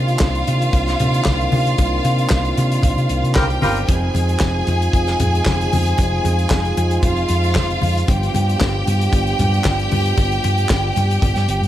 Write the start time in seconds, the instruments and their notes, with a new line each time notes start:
Already playing: fingered electric bass C3, french horn section D#3 A#3 C4 D4 F4, violin section F4 F5
0.08 closed hi-hat
0.19 fingered electric bass C2, kick, snare, clap, high conga
0.35 closed hi-hat
0.47 fingered electric bass C3, closed hi-hat, muted conga
0.62 closed hi-hat
0.73 fingered electric bass C2, kick, closed hi-hat, muted conga
0.87 snare, closed hi-hat
1.00 fingered electric bass C3, closed hi-hat, low conga
1.14 closed hi-hat
1.25 fingered electric bass C2, kick, snare, clap, high conga
1.41 closed hi-hat
1.52 fingered electric bass C3, open hi-hat, high conga
1.66 closed hi-hat
1.78 fingered electric bass C2, kick, closed hi-hat, muted conga
2.05 fingered electric bass C3, closed hi-hat, muted conga
2.18 closed hi-hat
2.30 fingered electric bass C2, kick, snare, clap, high conga
2.45 closed hi-hat
2.57 fingered electric bass C3, closed hi-hat, muted conga
2.72 closed hi-hat
2.82 fingered electric bass C2, kick, closed hi-hat, low conga
2.97 fingered electric bass C3, closed hi-hat
3.09 fingered electric bass C2, closed hi-hat
3.23 fingered electric bass C3, closed hi-hat
3.35 fingered electric bass C2, horn section G3 A#3 F4 A#4, violin section G4 G5, kick, snare, clap, high conga
3.50 closed hi-hat
3.62 fingered electric bass G1, horn section G3 A#3 F4 A#4, open hi-hat, high conga
3.77 closed hi-hat
3.87 fingered electric bass F1, french horn section F3 G#3 D#4 F4, violin section G#4 G#5, kick, closed hi-hat, muted conga
4.14 fingered electric bass F2, closed hi-hat, muted conga
4.29 closed hi-hat
4.40 fingered electric bass F1, kick, snare, clap, high conga
4.67 fingered electric bass F2, closed hi-hat, muted conga
4.82 closed hi-hat
4.93 fingered electric bass F1, kick, closed hi-hat
5.07 snare, closed hi-hat
5.20 fingered electric bass F2, closed hi-hat, low conga
5.35 closed hi-hat
5.46 fingered electric bass F1, kick, snare, clap, high conga
5.61 closed hi-hat
5.72 fingered electric bass F2, open hi-hat, high conga
5.87 closed hi-hat
5.98 fingered electric bass F1, kick, closed hi-hat, muted conga
6.24 fingered electric bass F2, closed hi-hat, muted conga
6.39 closed hi-hat
6.50 fingered electric bass F1, kick, snare, clap, high conga
6.65 closed hi-hat
6.77 fingered electric bass F2, closed hi-hat, muted conga
6.91 closed hi-hat
7.02 fingered electric bass F1, violin section F4 F5, kick, closed hi-hat, muted conga, low conga
7.17 closed hi-hat
7.28 fingered electric bass F2, closed hi-hat
7.44 closed hi-hat
7.55 fingered electric bass F1, kick, snare, clap, high conga
7.70 closed hi-hat
7.82 fingered electric bass F2, open hi-hat, high conga
7.97 closed hi-hat
8.07 fingered electric bass G1, french horn section G3 B3 D4, violin section G4 G5, kick, closed hi-hat, muted conga
8.23 closed hi-hat
8.34 fingered electric bass G2, closed hi-hat, muted conga
8.49 closed hi-hat
8.61 fingered electric bass G1, kick, snare, clap, high conga
8.87 fingered electric bass G2, closed hi-hat, muted conga
9.01 closed hi-hat
9.13 fingered electric bass G1, kick, closed hi-hat, muted conga
9.27 closed hi-hat
9.39 fingered electric bass G2, closed hi-hat, low conga
9.54 closed hi-hat
9.64 fingered electric bass G1, kick, snare, clap, high conga
9.79 closed hi-hat
9.91 fingered electric bass G2, open hi-hat, high conga
10.06 closed hi-hat
10.17 fingered electric bass G1, kick, closed hi-hat, muted conga
10.32 closed hi-hat
10.44 fingered electric bass G2, closed hi-hat, muted conga
10.58 closed hi-hat
10.69 fingered electric bass G1, kick, snare, clap, high conga
10.96 fingered electric bass G2, closed hi-hat, muted conga
11.11 closed hi-hat
11.22 fingered electric bass G1, kick, closed hi-hat, muted conga, low conga
11.36 fingered electric bass G2, snare, closed hi-hat
11.48 fingered electric bass G1, closed hi-hat
11.62 fingered electric bass G2, closed hi-hat